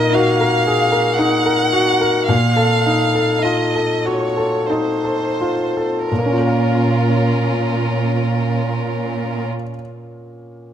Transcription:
0, 0, Header, 1, 5, 480
1, 0, Start_track
1, 0, Key_signature, -5, "minor"
1, 0, Tempo, 1027397
1, 549, Tempo, 1100917
1, 1028, Time_signature, 3, 2, 24, 8
1, 1029, Tempo, 1158301
1, 1509, Tempo, 1257862
1, 1989, Tempo, 1405152
1, 2469, Tempo, 1307190
1, 4172, End_track
2, 0, Start_track
2, 0, Title_t, "Violin section"
2, 0, Program_c, 0, 48
2, 0, Note_on_c, 0, 75, 65
2, 58, Note_off_c, 0, 75, 0
2, 70, Note_on_c, 0, 77, 70
2, 551, Note_off_c, 0, 77, 0
2, 553, Note_on_c, 0, 78, 70
2, 1028, Note_on_c, 0, 77, 67
2, 1030, Note_off_c, 0, 78, 0
2, 1499, Note_off_c, 0, 77, 0
2, 1510, Note_on_c, 0, 75, 52
2, 1742, Note_off_c, 0, 75, 0
2, 1743, Note_on_c, 0, 73, 47
2, 1987, Note_on_c, 0, 72, 45
2, 1990, Note_off_c, 0, 73, 0
2, 2465, Note_on_c, 0, 70, 38
2, 2468, Note_off_c, 0, 72, 0
2, 3696, Note_off_c, 0, 70, 0
2, 4172, End_track
3, 0, Start_track
3, 0, Title_t, "Grand piano"
3, 0, Program_c, 1, 0
3, 0, Control_c, 1, 64, 127
3, 0, Note_on_c, 1, 46, 52
3, 0, Note_on_c, 1, 63, 38
3, 0, Note_on_c, 1, 70, 45
3, 67, Note_on_c, 1, 66, 41
3, 137, Note_off_c, 1, 70, 0
3, 190, Note_on_c, 1, 70, 41
3, 254, Note_off_c, 1, 66, 0
3, 311, Note_on_c, 1, 68, 33
3, 378, Note_off_c, 1, 70, 0
3, 429, Note_off_c, 1, 68, 0
3, 429, Note_on_c, 1, 70, 39
3, 555, Note_off_c, 1, 63, 0
3, 555, Note_on_c, 1, 63, 39
3, 622, Note_off_c, 1, 70, 0
3, 673, Note_on_c, 1, 70, 42
3, 742, Note_off_c, 1, 63, 0
3, 790, Note_on_c, 1, 66, 40
3, 861, Note_off_c, 1, 70, 0
3, 913, Note_on_c, 1, 70, 39
3, 981, Note_off_c, 1, 66, 0
3, 1010, Note_off_c, 1, 46, 0
3, 1031, Note_off_c, 1, 70, 0
3, 1032, Note_on_c, 1, 46, 45
3, 1037, Control_c, 1, 64, 0
3, 1110, Control_c, 1, 64, 127
3, 1148, Note_on_c, 1, 69, 39
3, 1271, Note_on_c, 1, 63, 33
3, 1339, Note_off_c, 1, 69, 0
3, 1391, Note_on_c, 1, 69, 36
3, 1463, Note_off_c, 1, 63, 0
3, 1513, Note_on_c, 1, 65, 33
3, 1579, Note_off_c, 1, 69, 0
3, 1632, Note_on_c, 1, 69, 35
3, 1695, Note_off_c, 1, 65, 0
3, 1745, Note_on_c, 1, 66, 30
3, 1818, Note_off_c, 1, 69, 0
3, 1865, Note_off_c, 1, 66, 0
3, 1866, Note_on_c, 1, 69, 30
3, 1991, Note_on_c, 1, 63, 29
3, 2061, Note_off_c, 1, 69, 0
3, 2109, Note_on_c, 1, 69, 30
3, 2182, Note_off_c, 1, 63, 0
3, 2234, Note_on_c, 1, 65, 31
3, 2307, Note_off_c, 1, 69, 0
3, 2357, Note_on_c, 1, 69, 29
3, 2426, Note_off_c, 1, 65, 0
3, 2457, Note_off_c, 1, 46, 0
3, 2471, Note_off_c, 1, 69, 0
3, 2476, Note_on_c, 1, 46, 25
3, 2477, Control_c, 1, 64, 0
3, 2501, Note_on_c, 1, 58, 26
3, 2528, Note_on_c, 1, 61, 26
3, 2554, Note_on_c, 1, 65, 24
3, 2559, Control_c, 1, 64, 127
3, 2578, Note_on_c, 1, 70, 27
3, 2602, Note_on_c, 1, 77, 26
3, 3708, Note_off_c, 1, 46, 0
3, 3733, Note_off_c, 1, 58, 0
3, 3760, Note_off_c, 1, 61, 0
3, 3786, Note_off_c, 1, 65, 0
3, 3810, Note_off_c, 1, 70, 0
3, 3834, Note_off_c, 1, 77, 0
3, 4172, End_track
4, 0, Start_track
4, 0, Title_t, "Violin section"
4, 0, Program_c, 2, 48
4, 65, Note_on_c, 2, 63, 46
4, 65, Note_on_c, 2, 70, 45
4, 429, Note_off_c, 2, 63, 0
4, 429, Note_off_c, 2, 70, 0
4, 555, Note_on_c, 2, 70, 43
4, 556, Note_on_c, 2, 63, 41
4, 916, Note_off_c, 2, 70, 0
4, 917, Note_off_c, 2, 63, 0
4, 1510, Note_on_c, 2, 69, 37
4, 1512, Note_on_c, 2, 63, 36
4, 1873, Note_off_c, 2, 69, 0
4, 1874, Note_off_c, 2, 63, 0
4, 1992, Note_on_c, 2, 63, 32
4, 1997, Note_on_c, 2, 69, 37
4, 2366, Note_off_c, 2, 63, 0
4, 2368, Note_off_c, 2, 69, 0
4, 2473, Note_on_c, 2, 65, 29
4, 2475, Note_on_c, 2, 61, 31
4, 3706, Note_off_c, 2, 65, 0
4, 3707, Note_off_c, 2, 61, 0
4, 4172, End_track
5, 0, Start_track
5, 0, Title_t, "Cello section"
5, 0, Program_c, 3, 48
5, 1033, Note_on_c, 3, 46, 50
5, 1421, Note_off_c, 3, 46, 0
5, 2470, Note_on_c, 3, 46, 35
5, 3702, Note_off_c, 3, 46, 0
5, 4172, End_track
0, 0, End_of_file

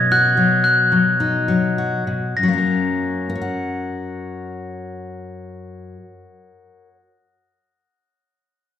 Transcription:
0, 0, Header, 1, 3, 480
1, 0, Start_track
1, 0, Key_signature, 6, "major"
1, 0, Tempo, 543478
1, 86, Time_signature, 4, 2, 24, 8
1, 1048, Tempo, 588813
1, 2008, Tempo, 617920
1, 7000, End_track
2, 0, Start_track
2, 0, Title_t, "Glockenspiel"
2, 0, Program_c, 0, 9
2, 0, Note_on_c, 0, 92, 77
2, 105, Note_on_c, 0, 90, 79
2, 106, Note_off_c, 0, 92, 0
2, 536, Note_off_c, 0, 90, 0
2, 565, Note_on_c, 0, 90, 65
2, 1731, Note_off_c, 0, 90, 0
2, 2010, Note_on_c, 0, 94, 65
2, 4763, Note_off_c, 0, 94, 0
2, 7000, End_track
3, 0, Start_track
3, 0, Title_t, "Steel-string acoustic guitar"
3, 0, Program_c, 1, 25
3, 0, Note_on_c, 1, 47, 56
3, 0, Note_on_c, 1, 54, 54
3, 101, Note_on_c, 1, 66, 58
3, 317, Note_off_c, 1, 54, 0
3, 328, Note_on_c, 1, 54, 58
3, 800, Note_off_c, 1, 54, 0
3, 811, Note_on_c, 1, 54, 51
3, 1059, Note_on_c, 1, 63, 48
3, 1279, Note_off_c, 1, 54, 0
3, 1289, Note_on_c, 1, 54, 52
3, 1525, Note_off_c, 1, 66, 0
3, 1533, Note_on_c, 1, 66, 48
3, 1736, Note_off_c, 1, 47, 0
3, 1737, Note_off_c, 1, 63, 0
3, 1739, Note_off_c, 1, 66, 0
3, 1769, Note_on_c, 1, 47, 49
3, 1983, Note_off_c, 1, 47, 0
3, 2018, Note_on_c, 1, 42, 51
3, 2051, Note_off_c, 1, 54, 0
3, 2060, Note_on_c, 1, 54, 51
3, 2099, Note_on_c, 1, 58, 48
3, 2138, Note_on_c, 1, 61, 47
3, 2175, Note_on_c, 1, 70, 45
3, 2728, Note_off_c, 1, 58, 0
3, 2731, Note_off_c, 1, 70, 0
3, 2731, Note_on_c, 1, 70, 53
3, 2774, Note_off_c, 1, 61, 0
3, 2777, Note_on_c, 1, 73, 54
3, 2824, Note_on_c, 1, 78, 51
3, 4802, Note_off_c, 1, 42, 0
3, 4844, Note_off_c, 1, 54, 0
3, 5515, Note_off_c, 1, 70, 0
3, 5561, Note_off_c, 1, 73, 0
3, 5608, Note_off_c, 1, 78, 0
3, 7000, End_track
0, 0, End_of_file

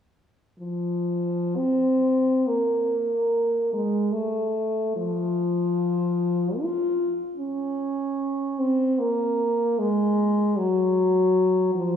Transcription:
0, 0, Header, 1, 2, 480
1, 0, Start_track
1, 0, Tempo, 946372
1, 307, Time_signature, 4, 2, 24, 8
1, 799, Tempo, 878477
1, 1279, Tempo, 837989
1, 3199, Tempo, 795756
1, 5599, Tempo, 781250
1, 6939, End_track
2, 0, Start_track
2, 0, Title_t, "French horn"
2, 0, Program_c, 0, 60
2, 302, Note_on_c, 0, 53, 41
2, 795, Note_on_c, 0, 60, 44
2, 802, Note_off_c, 0, 53, 0
2, 1288, Note_on_c, 0, 58, 37
2, 1297, Note_off_c, 0, 60, 0
2, 2004, Note_off_c, 0, 58, 0
2, 2012, Note_on_c, 0, 56, 41
2, 2236, Note_on_c, 0, 57, 44
2, 2245, Note_off_c, 0, 56, 0
2, 2713, Note_off_c, 0, 57, 0
2, 2717, Note_on_c, 0, 53, 45
2, 3686, Note_on_c, 0, 65, 46
2, 3696, Note_off_c, 0, 53, 0
2, 4003, Note_off_c, 0, 65, 0
2, 4142, Note_on_c, 0, 61, 47
2, 4880, Note_on_c, 0, 60, 45
2, 4889, Note_off_c, 0, 61, 0
2, 5121, Note_on_c, 0, 58, 46
2, 5130, Note_off_c, 0, 60, 0
2, 5602, Note_on_c, 0, 56, 52
2, 5612, Note_off_c, 0, 58, 0
2, 6087, Note_on_c, 0, 54, 51
2, 6096, Note_off_c, 0, 56, 0
2, 6804, Note_off_c, 0, 54, 0
2, 6808, Note_on_c, 0, 53, 50
2, 6939, Note_off_c, 0, 53, 0
2, 6939, End_track
0, 0, End_of_file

